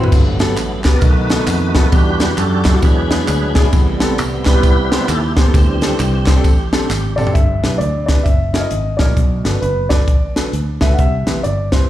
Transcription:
0.04 C4 E4 F#4 B4, floor tom
0.12 G1 G2 F#3 A3 B3, kick, crash, tambourine
0.39 B3 F#4 G4 A4, snare, ride, tambourine
0.57 A1, clap, ride, tambourine
0.84 B3 F#4 G4 B4 D5, kick, snare, clap, ride, tambourine
0.94 B3 F#4 G4 B4
0.98 B1 D#3 A3 A#4 B4, kick, ride, tambourine
1.02 D#4 F#4
1.30 B3 D#4 F#4 A4, snare, ride, tambourine
1.47 F2, clap, ride, tambourine
1.75 B3 D#4 F#4 A4, kick, snare, ride, tambourine
1.83 B3 D#4 F#4 A4
1.92 E2 E3 G3 D4 F#4 G4 B4, kick, ride, tambourine
2.20 G3 D4 E4 F#4, snare, ride, tambourine
2.38 F#2 D4 F#4 A4, clap, ride, tambourine
2.64 G3 D4 E4 G4, kick, snare, clap, ride, tambourine
2.74 G3 D4 E4 F#4
2.82 E2 E3 F#3 G#3 D4 G#4 B4, kick, ride, tambourine
3.10 B3 D4 E4 G#4, snare, ride, tambourine
3.28 D2, clap, ride, tambourine
3.55 B3 D4 E4 G#4, kick, snare, ride, tambourine
3.65 B3 D4 E4 G#4
3.73 A1 A2 C3 G3 B3, kick, ride, tambourine
4.00 B3 C4 G4 A4, snare, ride, tambourine
4.18 C2, clap, ride, tambourine
4.45 B3 C4 E4 G4 B4, kick, snare, clap, ride, tambourine
4.54 B3 C4 G4 B4
4.63 A1, kick, ride, tambourine
4.91 C3 G3 B3 C4 G4 C5, snare, ride, tambourine
5.08 D#2 A4, clap, ride, tambourine
5.36 B3 C4 G4 C5, kick, snare, ride, tambourine
5.46 B3 C4 G4 A4
5.54 D2 D3 E3 G3 C4, kick, ride, tambourine
5.81 C4 D4 G4 A4, snare, ride, tambourine
6.00 C2, clap, ride, tambourine
6.26 E3 G3 C4 D4 G4 C5, kick, snare, clap, ride, tambourine
6.36 C4 D4 G4 A4
6.44 A1, kick, ride, tambourine
6.73 C4 D4 G4 A4, snare, ride, tambourine
6.90 G#1, snare, clap, tambourine
7.16 C4 D4 G4 A4 D5, mid tom, tambourine
7.26 C4 D4 G4 A4, floor tom
7.33 G1 G2 E5, kick, closed hi-hat
7.63 B1 D4 E4 G4 B4, snare, closed hi-hat
7.78 D2 D5, closed hi-hat
8.06 D4 E4 G4 B4 D5, kick, snare, closed hi-hat
8.23 F#1 E5, kick, closed hi-hat
8.54 C#4 E4 F#4 A#4 E5, snare, closed hi-hat
8.60 D#5
8.71 G#1, closed hi-hat
8.97 A#1 C#4 E4 F#4 A#4 D5, kick, snare, closed hi-hat
9.16 B1 B2, kick, closed hi-hat
9.44 G1 D4 F#4 A4 B4, snare, closed hi-hat
9.61 F#1 B4, closed hi-hat
9.89 D4 F#4 A4 B4 D5, kick, snare, closed hi-hat
10.08 A1, kick, closed hi-hat
10.36 D4 F#4 A4 B4, snare, closed hi-hat
10.53 D2, closed hi-hat
10.81 C#2 D4 F#4 A4 B4 E5, kick, snare, closed hi-hat
10.93 F#5
10.99 C2 C3 E5, kick, closed hi-hat
11.26 A1 C4 E4 G4 B4, snare, closed hi-hat
11.43 G1 D5, closed hi-hat
11.72 C4 E4 G4 B4 C5, kick, snare, closed hi-hat

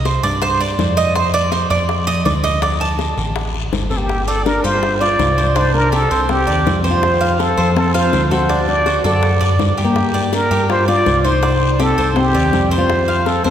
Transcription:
Already playing: C2
0.05 C5, high bongo, short guiro
0.23 G2 D5, high bongo, short guiro
0.42 C5, high bongo, long guiro
0.60 D5, high bongo
0.78 F2, high bongo, low bongo, short guiro
0.97 D#5, high bongo, short guiro
1.15 C5, high bongo, long guiro
1.34 D5
1.52 C5, high bongo, short guiro
1.70 F2 D5, high bongo, short guiro
1.89 high bongo, long guiro
2.07 D#5, high bongo
2.25 D2 D5, high bongo, low bongo, short guiro
2.44 D#5, high bongo, short guiro
2.62 D5, high bongo, long guiro
2.81 A5
2.99 high bongo, short guiro
3.17 A1, high bongo, short guiro
3.36 high bongo, long guiro
3.55 high bongo
3.72 G1, high bongo, low bongo, short guiro
3.90 C4 A4, high bongo, short guiro
3.97 A#3 G4
4.09 high bongo, long guiro
4.27 C4 A4 D5, high bongo
4.46 D4 A#4, high bongo, short guiro
4.64 G2 F4 G4 C5, high bongo, short guiro
4.83 high bongo, long guiro
5.01 F4 D5, high bongo
5.19 C2, high bongo, low bongo, short guiro
5.37 C5, short guiro
5.56 D4 D#4 C5, high bongo, long guiro
5.74 D4 A#4, high bongo
5.92 C4 G4 A4, high bongo, short guiro
6.11 C2 C5, high bongo, short guiro
6.29 C4 G4, high bongo, long guiro
6.47 D#2 D5, high bongo
6.66 F2, high bongo, low bongo, short guiro
6.84 C5, short guiro
6.90 F4 C5
7.03 high bongo, long guiro
7.21 F5, high bongo
7.39 C4 A4, high bongo, short guiro
7.57 F2 C5, high bongo, short guiro
7.76 C4 A4, high bongo, long guiro
7.94 F4 C5 F5, high bongo
8.13 D2, high bongo, low bongo, short guiro
8.31 F#4 A4 C5, short guiro
8.49 D4, high bongo, long guiro
8.67 F#4 D5, high bongo
8.86 F#4, high bongo, short guiro
9.04 F#2 F#4 A4 D5, high bongo, short guiro
9.23 high bongo, long guiro
9.41 F#2 D5, high bongo
9.59 G2, high bongo, low bongo, short guiro
9.78 G4, short guiro
9.84 A#3 G4
9.96 high bongo, long guiro
10.14 D5, high bongo
10.33 D4 A#4, high bongo, short guiro
10.51 G2 G4, high bongo, short guiro
10.69 F4 C5, high bongo, long guiro
10.88 F4 D5, high bongo
11.06 C2, high bongo, low bongo, short guiro
11.25 D#4 C5, short guiro
11.43 D5, high bongo, long guiro
11.61 high bongo
11.79 C4 G4 A4, high bongo, short guiro
11.98 C2 C5, high bongo, short guiro
12.16 C4 G4, high bongo, long guiro
12.34 D#2 D5, high bongo
12.53 F2, high bongo, low bongo, short guiro
12.71 C5, short guiro
12.78 F4 C5
12.90 high bongo, long guiro
13.08 F5, high bongo
13.26 C4 A4, high bongo, short guiro
13.44 F2 C4 A4 C5, high bongo, short guiro

